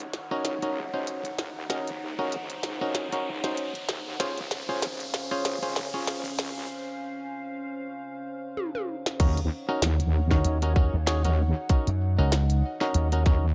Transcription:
Already playing: wobble bass C#2, analog synth pad D#4 C#5 F#5, riser
0.00 closed hi-hat
0.13 snare
0.31 clav C#4 D#4 F#4 A#4
0.44 wobble bass C#2, snare, closed hi-hat
0.62 wobble bass C#2, clav C#4 D#4 F#4 A#4, closed hi-hat
0.93 wobble bass C#2, clav C#4 D#4 F#4 C5
1.07 closed hi-hat
1.25 closed hi-hat
1.38 wobble bass D#2, snare
1.70 wobble bass D#2, clav C#4 D#4 F#4 A#4, analog synth pad C5, snare, closed hi-hat
1.87 closed hi-hat
2.18 wobble bass C#2, clav C#4 D#4 F#4 A#4
2.32 closed hi-hat
2.50 closed hi-hat
2.63 wobble bass C#2, snare
2.81 clav C#4 D#4 F#4 A#4
2.95 snare, closed hi-hat
3.12 clav C#4 D#4 F#4 A#4, closed hi-hat
3.44 clav C#4 D#4 F#4 C5, snare
3.57 closed hi-hat
3.75 closed hi-hat
3.89 wobble bass D#2, snare
4.20 wobble bass C#2, analog synth pad C#4 C5 F5, clav C#4 F4 G#4 C5, snare, closed hi-hat
4.38 closed hi-hat
4.51 snare
4.69 wobble bass G#1, clav C#4 F4 G#4 C5
4.82 snare, closed hi-hat
5.00 closed hi-hat
5.14 snare
5.31 clav C#4 F4 G#4 C5
5.44 wobble bass G#1, snare, closed hi-hat
5.62 wobble bass G#1, clav C#4 F4 G#4 C5, closed hi-hat
5.76 snare
5.94 wobble bass G#1, clav C#4 F4 G#4 C#5
6.07 snare, closed hi-hat
6.25 closed hi-hat
6.39 wobble bass C#2, snare
8.57 high tom
8.75 high tom
9.06 snare
9.20 wobble bass D#2, clav C#4 D#4 F#4 A#4, analog synth pad D#4 C#5 F#5, kick, closed hi-hat, crash
9.37 closed hi-hat
9.69 clav C#4 D#4 F#4 A#4
9.82 wobble bass D#2, snare, closed hi-hat
10.00 closed hi-hat
10.31 clav C#4 D#4 F#4 A#4, kick, snare
10.45 slap bass D#2, closed hi-hat
10.62 clav C#4 D#4 F#4 A#4, closed hi-hat
10.76 clav C#4 D#4 F#4 A#4, kick
10.94 slap bass D#2
11.07 clav C#4 D#4 F#4 G#4, snare, closed hi-hat
11.25 wobble bass D#2, clav C#4 D#4 F#4 A#4, closed hi-hat
11.69 clav C#4 D#4 F#4 A#4, analog synth pad D#5, kick, closed hi-hat
11.87 slap bass F#2, closed hi-hat
12.19 slap bass C#2, clav C#4 D#4 F#4 A#4
12.32 snare, closed hi-hat
12.50 closed hi-hat
12.81 clav C#4 D#4 F#4 A#4, snare
12.94 slap bass D#2, closed hi-hat
13.12 clav C#4 D#4 F#4 A#4, closed hi-hat
13.26 wobble bass D#2, clav C#4 D#4 F#4 A#4, kick, snare

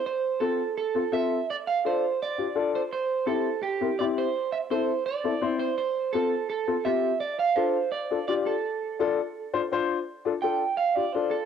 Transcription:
0.06 clean electric guitar C5
0.40 upright piano C4 F4 A4, clean electric guitar A4
0.78 clean electric guitar A4
0.95 upright piano C4 F4 A4
1.12 upright piano C4 F4 A4, clean electric guitar E5
1.50 clean electric guitar D5
1.67 clean electric guitar F5
1.85 upright piano D4 F4 A4, clean electric guitar C5
2.23 clean electric guitar D5
2.38 upright piano D4 F4 G4
2.55 upright piano D4 F4 A4
2.75 clean electric guitar C5
2.93 clean electric guitar C5
3.26 upright piano C4 E4 G4, clean electric guitar A4
3.63 clean electric guitar G4
3.81 upright piano C4 E4 A#4
3.99 upright piano C4 E4 G4, clean electric guitar D5
4.18 clean electric guitar C5
4.52 clean electric guitar E5
4.70 upright piano C4 E4 A4, clean electric guitar C5
5.06 clean electric guitar D5
5.24 upright piano C4 E4 A4
5.41 upright piano C4 E4 C5
5.59 clean electric guitar C5
5.78 clean electric guitar C5
6.13 upright piano C4 F4 A4, clean electric guitar A4
6.50 clean electric guitar A4
6.67 upright piano C4 F4 A4
6.85 upright piano C4 F4 G4, clean electric guitar E5
7.20 clean electric guitar D5
7.39 clean electric guitar F5
7.56 upright piano D4 F4 A4, clean electric guitar C5
7.92 clean electric guitar D5
8.10 upright piano D4 F4 A4
8.28 upright piano D4 F4 G4, clean electric guitar D5
8.46 clean electric guitar A4
8.99 upright piano D4 F4 A4
9.53 upright piano D4 F4 C5
9.72 upright piano D4 F4 C5
10.25 upright piano D4 F4 A4
10.42 upright piano D4 F4 A4, clean electric guitar G5
10.77 clean electric guitar F5
10.95 upright piano D4 F4 G4, clean electric guitar D5
11.12 upright piano D4 F4 A4, clean electric guitar C5
11.31 clean electric guitar A4

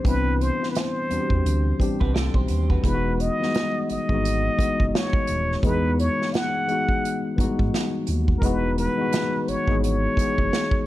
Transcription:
Already playing: tine electric piano E3 G3 B3 C4 D4 G4
0.04 analog synth bass C2, tine electric piano E3 B3 C4 D4, muted trumpet B4, kick, closed hi-hat
0.09 tine electric piano E4
0.41 muted trumpet C5, closed hi-hat
0.63 snare
0.71 muted trumpet B4
0.75 muted trumpet C5, snare, closed hi-hat
1.09 analog synth bass E2, tine electric piano E3 G3 C4 D4, closed hi-hat
1.13 tine electric piano F#4
1.20 tine electric piano G4
1.30 analog synth bass E2, kick
1.45 analog synth bass D2, closed hi-hat
1.78 analog synth bass C2, tine electric piano E3 G3 C4 D4, kick, closed hi-hat
1.83 tine electric piano G4
2.00 analog synth bass C2, clean electric guitar F#4 B4, kick
2.14 clean electric guitar A4 D5, snare, closed hi-hat
2.34 analog synth bass B1, clean electric guitar G4 C5, kick
2.48 analog synth bass D#2, closed hi-hat
2.70 clean electric guitar F#4 B4, kick
2.83 analog synth bass E1, tine electric piano E3 G#3 B3 D#4, muted trumpet B4, kick, closed hi-hat
2.88 tine electric piano F4
2.94 tine electric piano F#4
3.20 muted trumpet D#5, closed hi-hat
3.39 tine electric piano E3 G3 B3 D#4, snare
3.44 tine electric piano G#3 F#4
3.54 snare, closed hi-hat
3.89 analog synth bass G#1, muted trumpet D#5, closed hi-hat
4.09 analog synth bass G#1, tine electric piano E3 G#3 B3 D#4, kick
4.14 tine electric piano F#4
4.25 closed hi-hat
4.57 analog synth bass F#1, tine electric piano E3 G#3 B3 D#4, kick, closed hi-hat
4.62 tine electric piano F#4
4.80 analog synth bass F#1, kick
4.95 muted trumpet C#5, snare, closed hi-hat
5.13 kick
5.27 analog synth bass D#1, closed hi-hat
5.52 snare
5.62 analog synth bass E2, tine electric piano E3 G#3 B3 D#4, muted trumpet B4, kick, closed hi-hat
5.67 tine electric piano G#4
5.99 muted trumpet C#5, closed hi-hat
6.22 snare
6.34 muted trumpet F#5, snare, closed hi-hat
6.67 tine electric piano E3 G#3 B3 D#4, closed hi-hat
6.72 tine electric piano F#4
6.88 kick
7.05 closed hi-hat
7.36 analog synth bass G#2, tine electric piano E3 G3 B3 D#4, kick
7.40 tine electric piano G#3 F#4, closed hi-hat
7.59 analog synth bass G#2, kick
7.74 snare, closed hi-hat
8.07 analog synth bass D#2, closed hi-hat
8.28 kick
8.39 analog synth bass E1, tine electric piano E3 G#3, muted trumpet A#4, kick
8.43 tine electric piano B3 D#4 F#4, muted trumpet B4, closed hi-hat
8.78 muted trumpet B4, closed hi-hat
8.97 tine electric piano E3 G#3 B3 D#4
9.01 tine electric piano F#4
9.12 snare, closed hi-hat
9.48 analog synth bass G#1, muted trumpet C#5, closed hi-hat
9.67 analog synth bass G#1, tine electric piano E3 G#3 B3 D#4, kick
9.72 tine electric piano G#4
9.84 muted trumpet C#5, closed hi-hat
10.16 analog synth bass F#1, tine electric piano E3 G#3 B3 D#4, kick, closed hi-hat
10.21 tine electric piano G#4
10.38 analog synth bass F#1, kick
10.53 snare, closed hi-hat
10.71 kick

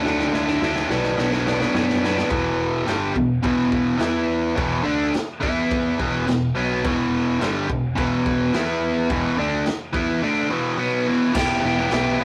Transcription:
0.03 picked electric bass D2, overdriven electric guitar D3 F#3 A3, snare
0.08 overdriven electric guitar D4
0.20 snare
0.31 picked electric bass D2, overdriven electric guitar D3 F#3 A3, snare
0.36 overdriven electric guitar D4
0.46 overdriven electric guitar A3 D4, snare
0.51 overdriven electric guitar F#3
0.60 picked electric bass D2, overdriven electric guitar D3 F#3 A3, snare
0.65 overdriven electric guitar D4
0.76 snare
0.88 picked electric bass B1, overdriven electric guitar B2 F#3 B3, snare
0.93 overdriven electric guitar D4
1.03 snare
1.17 picked electric bass B1, overdriven electric guitar B2 F#3 B3, snare
1.22 overdriven electric guitar D4
1.31 overdriven electric guitar B3 D4, snare
1.36 overdriven electric guitar F#3
1.45 overdriven electric guitar B2 F#3 B3, snare
1.50 overdriven electric guitar D4
1.60 overdriven electric guitar B3 D4, snare
1.65 overdriven electric guitar F#3
1.74 picked electric bass F#2, overdriven electric guitar B2 F#3 B3, snare
1.78 overdriven electric guitar D4
1.90 snare
2.02 overdriven electric guitar B2 F#3 B3, snare
2.06 overdriven electric guitar D4
2.15 overdriven electric guitar B3 D4, snare
2.20 overdriven electric guitar F#3
2.30 picked electric bass E1, overdriven electric guitar E2 B2 E3, kick, crash
2.87 picked electric bass G1, overdriven electric guitar G2 D3 G3, snare, crash
3.14 picked electric bass E1, overdriven electric guitar E2 B2, kick
3.43 picked electric bass E1, overdriven electric guitar E2 B2 E3, kick, crash
3.72 kick
3.98 picked electric bass E2, overdriven electric guitar E3 B3 E4, snare, crash
4.55 picked electric bass E1, overdriven electric guitar E2 B2 E3, kick, crash
4.83 overdriven electric guitar D3 A3 D4
4.87 picked electric bass D2
5.13 muted overdriven electric guitar stroke, muted picked electric bass stroke, snare, crash
5.40 picked electric bass E2, overdriven electric guitar E3 B3 E4, kick
5.71 kick, crash
5.98 picked electric bass E1, overdriven electric guitar E2 B2 E3, kick
6.26 picked electric bass E1, overdriven electric guitar E2 B2, snare, crash
6.55 picked electric bass B1, overdriven electric guitar B2 F#3 B3
6.83 picked electric bass E1, overdriven electric guitar E2 B2 E3, kick, crash
7.39 picked electric bass G1, overdriven electric guitar G2 D3 G3, snare, crash
7.68 picked electric bass E1, overdriven electric guitar E2 B2, kick
7.95 picked electric bass E1, overdriven electric guitar E2 B2 E3, kick, crash
8.26 kick
8.53 picked electric bass E2, overdriven electric guitar E3 B3 E4, snare, crash
9.10 picked electric bass E1, overdriven electric guitar E2 B2 E3, kick, crash
9.37 picked electric bass D2, overdriven electric guitar D3 A3 D4
9.66 muted overdriven electric guitar stroke, muted picked electric bass stroke, snare, crash
9.93 picked electric bass E2, overdriven electric guitar E3 B3 E4, kick
10.22 overdriven electric guitar D3 A3 D4
10.49 overdriven electric guitar E2 B2 E3
10.78 overdriven electric guitar B2 F#3 B3
11.06 overdriven electric guitar E2 B2 E3
11.33 picked electric bass E1, overdriven electric guitar E3 B3 E4, kick, snare, crash
11.38 overdriven electric guitar G4
11.62 picked electric bass E1, overdriven electric guitar E3 B3 E4
11.67 overdriven electric guitar G4
11.76 overdriven electric guitar E4 G4
11.80 overdriven electric guitar B3
11.90 picked electric bass B1, overdriven electric guitar E3 B3 E4, snare, crash
11.95 overdriven electric guitar G4
12.19 picked electric bass B1, overdriven electric guitar E3 B3

